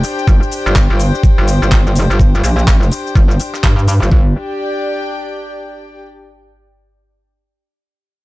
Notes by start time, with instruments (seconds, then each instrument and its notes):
Already playing: string section D4 G4 C5 G5
0.04 open hi-hat, cabasa
0.19 cabasa
0.27 wobble bass G1, kick, cabasa
0.43 cabasa
0.51 open hi-hat, cabasa
0.66 wobble bass G1, cabasa
0.76 kick, clap, cabasa
0.90 wobble bass G1
1.00 open hi-hat, cabasa
1.15 cabasa
1.23 kick, cabasa
1.38 wobble bass G1
1.47 open hi-hat, cabasa
1.62 wobble bass G1, cabasa
1.71 kick, clap, cabasa
1.87 cabasa
1.95 open hi-hat, cabasa
2.10 wobble bass G1, cabasa
2.19 kick, cabasa
2.35 cabasa
2.43 wobble bass A#1, open hi-hat, cabasa
2.59 cabasa
2.67 kick, clap, cabasa
2.83 cabasa
2.92 open hi-hat, cabasa
3.07 cabasa
3.15 wobble bass G1, kick, cabasa
3.31 cabasa
3.40 open hi-hat, cabasa
3.55 clap, cabasa
3.63 wobble bass G2, kick, clap, cabasa
3.79 cabasa
3.88 open hi-hat, cabasa
4.02 wobble bass G1, cabasa
4.11 wobble bass G1, string section D4, kick
4.20 string section G4
4.28 string section D5
4.34 string section G5